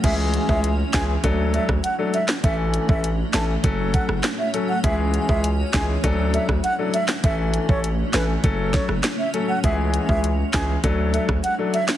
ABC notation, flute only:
X:1
M:4/4
L:1/16
Q:1/4=100
K:C#phr
V:1 name="Flute"
e z2 e z2 g z3 e z f z e z | e z2 e z2 a z3 f z2 e z f | e z2 e z2 g z3 e z f z e z | e z2 c z2 B z3 c z2 e z f |
e z2 e z2 g z3 e z f z e z |]